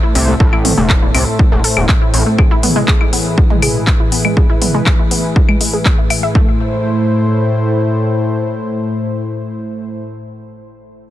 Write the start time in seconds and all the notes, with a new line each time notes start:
Already playing: A2 A3 A4 C5 E5, sub drop
0.03 E4
0.15 C2 C4, open hi-hat
0.28 A3
0.40 A1 A4, kick
0.53 E4, claves
0.65 C4, mid tom, open hi-hat
0.78 E1 A3
0.90 A4, kick, clap
1.02 E4
1.14 C2 C4, open hi-hat, claves
1.39 kick
1.52 E1 A3
1.64 A4, open hi-hat
1.77 E1, claves
1.89 kick, clap
2.02 E4
2.14 A1 C4, open hi-hat
2.26 A3
2.38 E3 E4 G#4 B4, kick, claves
2.51 E4
2.63 B3, mid tom, open hi-hat
2.76 G#3
2.88 G#4, kick, clap
3.01 E4, claves
3.13 B3, open hi-hat
3.38 kick
3.50 G#3, mid tom
3.62 G#4, open hi-hat, claves
3.87 kick, clap
4.00 E4
4.12 B3, open hi-hat
4.25 G#3, claves
4.37 G#4, kick
4.50 E4
4.62 B3, mid tom, open hi-hat
4.74 G#3
4.86 G#4, kick, clap, claves
4.99 E4
5.11 B3, open hi-hat
5.36 kick
5.49 G#3, claves
5.61 G#3, open hi-hat
5.73 G#4
5.85 kick, clap
5.98 E4
6.10 E5, open hi-hat, claves
6.23 E5
6.35 A2 A3 E4 C5, kick